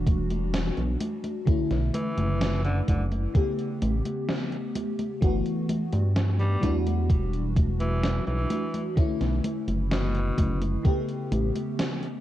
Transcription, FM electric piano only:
Already playing: E3 G3 D4 F#4
1.45 D3 A3 C#4 E4
3.33 C#3 A3 B3 G4
5.21 E3 A3 B3 F#4
6.61 E3 G3 D4 F#4
8.96 D3 A3 C#4 E4
10.83 C#3 A3 B3 G4

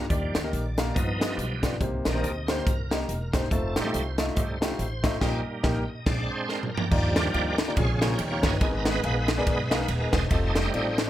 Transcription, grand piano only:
0.10 D#3 A#3 D#4 G4 D5
0.43 A#3 D#4 G4 A#4
0.77 A#3 D#4 G4 F5
0.96 G2
1.20 B3 F4 G4 D#5
1.63 B3 F4 G4 D5
1.81 C3 A#3 D#4 G4 C5
2.14 A#3 D#4 G4 C5
2.48 A#3 D#4 G4 C5
2.91 A#3 D#4 G4 D#5
3.34 A#3 D#4 G4 C5
3.51 A3 D#4 F4 C5
3.85 A3 D#4 F4 G4
4.18 A3 D#4 F4 D#5
4.61 A3 D#4 F4 G4
5.03 A3 D#4 F4 D#5
5.21 A#2 A#3 D#4 G4 D#5
5.63 A#3 D#4 G4 A#4
6.91 D#3 A#3 D#4 F4 G4 D5
7.33 A#3 D#4 F4 G4 D#5
7.67 A#3 D#4 F4 G4 D5
7.77 A#2
8.01 A#3 C#4 F4 G#4 C#5
8.19 D#3
8.31 A#3 D#4 F4 G4 C#5
8.61 G#2 B3 D#4 G#4 A#4 D#5
9.04 B3 D#4 G#4 A#4 F5
9.37 B3 D#4 G#4 A#4 D5
9.70 B3 D#4 G#4 A#4 F5
10.01 B3 D#4 G#4 A#4 D#5
10.30 C4 D#4 F4 A4 D#5
10.74 C4 D#4 F4 A4 D5

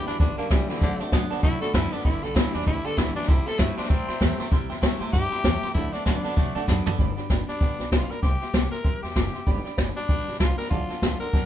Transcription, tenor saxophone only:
0.07 D4
0.20 D4
0.38 A#3
0.52 G3
0.69 D3
0.82 D3
1.43 E4
1.62 A4
1.74 E4
1.92 D4
2.05 E4
2.24 A4
2.36 E4
2.54 D4
2.66 E4
2.86 A4
2.98 E4
3.16 D4
3.28 E4
3.47 A4
3.59 E4
3.78 D4
3.89 C4
5.13 G4
5.74 E4
5.93 D4
6.06 D4
7.49 D4
7.92 F4
8.11 A#4
8.22 G4
8.72 A#4
9.02 G4
9.96 D4
10.40 F4
10.58 A#4
10.70 F4
11.20 A#4

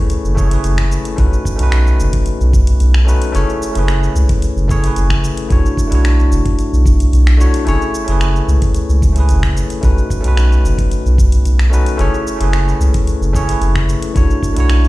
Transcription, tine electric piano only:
Already playing: A3 C#4 E4 G#4 B4 C#5
0.35 A3 C#4 E4 G#4 C#5
0.47 A3 C#4 E4
0.53 G#4 B4
1.16 A3 C#4 D#4 F#4 B4
1.56 A3 C#4 D#4
1.61 F#4 B4
3.05 A3 C#4 D#4 F#4 B4
3.32 A3 C#4 E4 G#4 C#5
3.72 A3 C#4 E4
3.77 G#4 B4
4.68 A3 C#4 E4 G#4 C#5
4.80 A3 C#4 E4
4.86 G#4 B4
5.49 A3 D4 E4 F#4 C#5
5.88 A3 D4 E4
5.93 F#4 C#5
7.38 A3 D4 E4 F#4 C#5
7.65 A3 C#4 E4 G#4 C#5
8.04 A3 C#4 E4
8.10 G#4 B4
9.13 A3 C#4 E4
9.18 G#4 B4
9.81 A3 C#4 D#4 F#4 B4
10.21 A3 C#4 D#4
10.26 F#4 B4
11.70 A3 C#4 D#4 F#4 B4
11.97 A3 C#4 E4 G#4 C#5
12.36 A3 C#4 E4
12.42 G#4 B4
13.33 A3 C#4 E4 G#4 C#5
13.45 A3 C#4 E4
13.50 G#4 B4
14.14 A3 D4 E4 F#4 C#5
14.53 A3 D4 E4
14.58 F#4 C#5

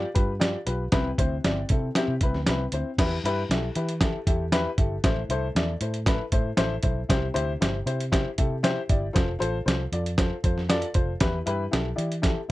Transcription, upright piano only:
0.14 F4 G4 B4
0.40 F4 G4 D5
0.66 F4 G4 B4
0.92 C3 C4 E4 B4
1.18 C4 E4 C5
1.44 C4 E4 D5
1.70 C4 E4 A4
1.97 C4 E4 G4
2.23 C4 E4 B4
2.48 C4 E4 B4
2.73 C4 E4 C5
2.99 E3 E4 G4 B4
3.25 E4 G4 B4
3.51 E4 G4 A4
3.76 E4 G4 B4
4.01 E4 G4 A4
4.27 E4 G4 A4
4.53 E4 G4 B4
4.78 E4 G4 A4
5.04 A2 E4 A4 C5
5.30 E4 A4 C5
5.56 E4 A4 D5
5.81 E4 A4 C5
6.07 E4 A4 B4
6.32 E4 A4 C5
6.57 E4 A4 C5
6.83 E4 A4 C5
7.09 C3 E4 G4 C5
7.34 E4 G4 C5
7.61 E4 G4 C5
7.86 E4 G4 C5
8.12 E4 G4 C5
8.38 E4 G4 A4
8.63 E4 G4 C5
8.89 E4 G4 D5
9.13 F4 A4 C5
9.39 F4 A4 C5
9.65 F4 A4 C5
9.92 F4 A4 D5
10.18 F4 A4 C5
10.43 F4 A4 C5
10.69 F4 A4 D5
10.94 F4 A4 C5
11.21 E3 E4 G4 B4
11.46 E4 G4 B4
11.71 E4 G4 A4
11.96 E4 G4 D5
12.22 E4 G4 A4

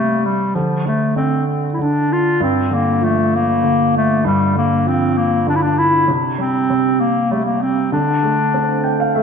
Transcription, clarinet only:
Already playing: A3
0.25 G3
0.55 F3
0.87 A3
1.17 C4
1.73 E4
1.81 D4
2.12 F4
2.42 C4
2.74 A#3
3.04 A3
3.35 A#3
3.97 A3
4.27 G3
4.58 A#3
4.88 C4
5.18 A#3
5.48 D4
5.56 E4
5.62 D4
5.78 E4
6.40 C4
7.00 A#3
7.31 A3
7.45 A#3
7.62 C4
7.93 D4

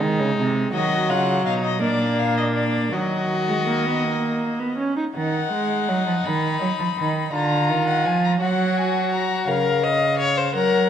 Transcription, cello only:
0.02 D#3
0.20 C#3
0.38 C3
0.74 D#3
1.10 C#3
1.46 B2
1.82 A#2
2.92 D#3
5.16 D#3
5.52 G#3
5.88 F#3
6.07 F3
6.24 D#3
6.61 F#3
6.79 F3
6.98 D#3
7.33 D3
7.69 D#3
8.05 F3
8.41 F#3
9.48 C#3
10.55 F#3

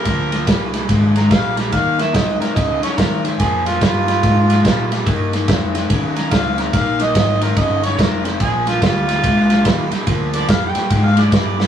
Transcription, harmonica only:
Already playing: A#4
1.17 A#5
1.32 F5
1.58 A#5
1.73 F5
2.00 E5
2.15 D#5
2.41 A#4
2.56 D#5
2.83 C#5
2.97 A#4
3.39 G#4
3.67 F4
3.82 F4
6.17 A#5
6.32 F5
6.60 A#5
6.75 F5
7.01 D#5
7.16 D#5
7.42 A#4
7.58 D#5
7.84 C#5
8.00 A#4
8.41 G#4
8.68 F4
8.83 F4
10.35 D5
10.49 F5
10.64 G5
11.05 F5
11.19 D5
11.33 D5

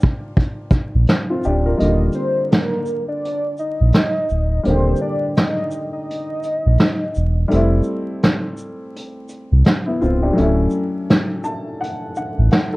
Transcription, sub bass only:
0.95 A#1
1.45 D1
1.80 D#1
3.80 A#1
4.30 D1
4.66 D#1
6.66 A#1
7.16 E1
7.52 F1
9.52 C2
10.02 C#1
10.38 D1
12.38 A1

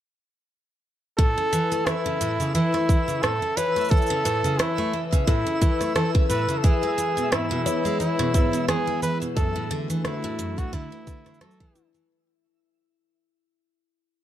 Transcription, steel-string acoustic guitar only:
1.18 A2
1.38 C#3
1.53 E3
1.72 A3
1.87 E3
2.06 C#3
2.21 A2
2.40 C#3
2.55 E3
2.74 A3
2.89 E3
3.08 C#3
3.23 A2
3.42 C#3
3.57 E3
3.76 A3
3.91 E3
4.10 C#3
4.25 A2
4.44 C#3
4.59 E3
4.78 A3
4.93 E3
5.12 C#3
5.27 A2
5.46 C#3
5.61 E3
5.81 A3
5.95 E3
6.15 C#3
6.30 A2
6.49 C#3
6.64 E3
6.83 G#3
6.98 E3
7.17 B2
7.32 G#2
7.51 B2
7.66 E3
7.85 G#3
8.00 E3
8.19 B2
8.34 G#2
8.53 B2
8.68 E3
8.87 G#3
9.02 E3
9.22 B2
9.37 F#2
9.56 A2
9.71 D3
9.90 E3
10.05 D3
10.24 A2
10.39 F#2
10.73 D3
10.92 E3
11.07 D3
11.26 D3
11.41 F#3
11.60 E3
11.75 D3
11.94 E3

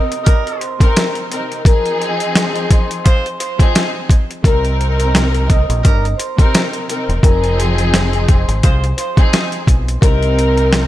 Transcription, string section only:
Already playing: C3 C4 D#4 A#4
0.78 C3 C4 D#4 A#4
1.30 C3 C4 D#4 A#4
1.65 F3 C4 D#4 G#4
3.57 F3 C4 D#4 G#4
4.43 C3 C4 D#4 A#4
6.36 C3 C4 D#4 A#4
6.88 C3 C4 D#4 A#4
7.23 F3 C4 D#4 G#4
9.15 F3 C4 D#4 G#4
10.01 C3 C4 D#4 A#4

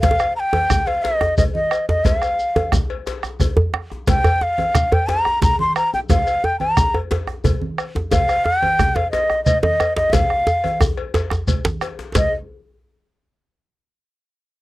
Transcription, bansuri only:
0.01 F5
0.36 G5 A#5
0.87 F5
1.03 D#5
1.37 D#5
1.54 D#5
1.89 D#5
2.05 F5
4.09 G5
4.43 F5
4.93 G5
5.09 A#5
5.43 A#5
5.60 C6
5.77 A#5
5.94 G5
6.10 F5
6.45 G5
6.60 A#5
8.12 F5
8.45 G5
8.95 F5
9.11 D#5
9.44 D#5
9.62 D#5
9.96 D#5
10.13 F5
12.17 D#5

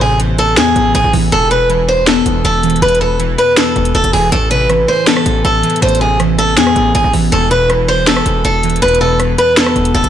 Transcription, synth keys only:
Already playing: A2 E3 B3
0.00 C3
0.20 E3
0.57 B3
0.76 A2
1.13 E3
1.32 E2
1.51 B2
1.70 E3
2.07 B3
2.25 E2
2.64 E3
2.82 E2
3.01 B2
3.19 E3
3.57 B3
3.76 E2
4.14 E3
4.33 A2
4.52 C3
4.69 E3
5.07 B3
5.26 A2
5.63 E3
5.82 A2
6.01 C3
6.20 E3
6.58 B3
6.76 A2
7.14 E3
7.33 E2
7.51 B2
7.70 E3
8.07 B3
8.25 E2
8.64 E3
8.82 E2
9.01 B2
9.19 E3
9.57 B3
9.76 E2

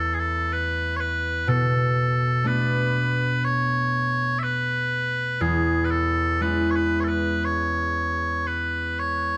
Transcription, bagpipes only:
Already playing: A4
0.14 G#4
0.19 A4
0.53 B4
0.96 B4 C#5
1.49 A4
2.47 B4
3.44 C#5
4.39 E5
4.43 B4
5.41 G#4
5.85 B4
5.91 A4
6.42 B4
6.71 C#5
6.75 B4
7.00 A4 C#5
7.08 B4
7.45 C#5
8.47 B4
8.99 C#5

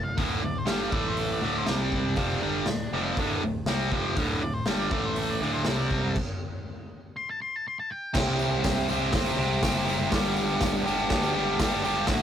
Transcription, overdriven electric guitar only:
0.18 D2 A2 D3
0.42 D2 A2
0.66 G2 D3 G3
0.92 A2 E3 A3
1.42 D2 A2 D3
1.66 C3 G3 C4
2.17 F2 C3 F3
2.42 G2 D3 G3
2.68 D2 A2
2.93 F2 C3 F3
3.18 D2 A2 D3
3.43 D2 A2
3.67 C3 G3 C4
3.92 F2 C3 F3
4.17 D2 A2 D3
4.42 D2 A2
4.66 G2 D3 G3
4.91 A2 E3 A3
5.42 D2 A2 D3
5.66 C3 G3 C4
8.14 C3 G3 C4 E4 G4 C5
8.89 C4 E4 G4 C5
9.13 C4 E4 G4 C5
9.37 C4 E4 G4 C5
9.63 C3 G3 C4 E4 G4 C5
9.87 C4 E4 G4 C5
10.13 G2 D3 G3 B3 D4 G4
10.86 G3 B3 D4 G4
11.11 G3 B3 D4 G4
11.34 G3 B3 D4 G4
11.60 G2 D3 G3 B3 D4 G4
11.84 G3 B3 D4 G4
12.08 D2 A2 D3 A3 F#4

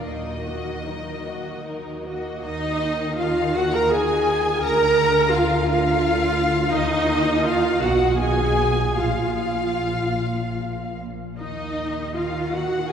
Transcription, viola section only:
0.05 F#3 D#4
0.45 A#3 F#4
0.85 F#3 D#4
1.26 A#3 F#4
1.65 F#3 D#4
2.05 A#3 F#4
2.44 D#4
3.18 F4
3.54 F#4
3.74 A#4
3.91 G#4
4.63 A#4
5.31 F4
5.66 F4
6.71 D#4
7.45 F4
7.82 F#4
8.19 G#4
8.98 F4
11.39 D#4
12.16 F4
12.55 F#4

